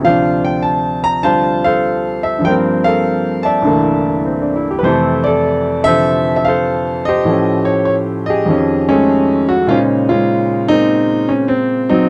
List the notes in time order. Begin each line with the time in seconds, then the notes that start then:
Already playing: D2
0.01 C3 F4 C5 F5
0.05 F3 D4
0.45 G5
0.62 A5
1.04 A#5
1.23 D3 G3 F4 C5 F5 A5
1.64 A4 C5 F5
2.23 E5
2.38 G2 F3
2.44 G3 A#3 A#4 C5 G5
2.50 C4
2.84 A4 A#4 F5
3.43 D5 E5 A5
3.62 C2 G2 D3 E3
3.66 A3 A#3
4.25 C4
4.42 D4
4.56 E4
4.71 G4
4.79 B4
4.83 F2 C3 E3 E4 A4 C5
4.88 A3
5.24 A4 D5
5.84 C3 D3 F3 A4 C5 E5
6.36 E5
6.45 A4 C5 F5
7.05 G4 C5 D#5
7.25 A2 F3 A3
7.30 C#4
7.65 C#5
7.85 C#5
8.26 G4 G#4 D#5
8.46 F2 D#3 F3
8.51 C#4
8.89 G#3 A3 C#4
9.49 F#4
9.67 A#2 C#3 G#3 C#4 F4 C5
9.72 D#4
10.09 G#3 C#4 F4
10.68 G#3 A#3 C4 D#4
11.29 C#4
11.48 C4
11.89 F#3 C4 D#4